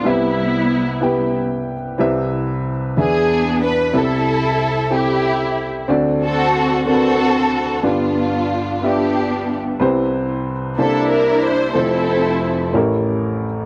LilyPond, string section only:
\new Staff \with { instrumentName = "String section" } { \time 6/8 \key c \major \tempo 4. = 61 << { e'2 r4 | r4. gis'4 b'8 | a'4. g'4 r8 | r8 a'4 a'4. |
f'4. g'4 r8 | r4. a'8 bes'8 c''8 | a'4. r4. | } \\ { <g b>2 r4 | r4. <b d'>4. | e'4. e'4. | r8 <c' fis'>4 <c' fis'>4. |
<b d'>4. <b d'>4. | r4. <d' e'>4. | <c' e'>4. r4. | } >> }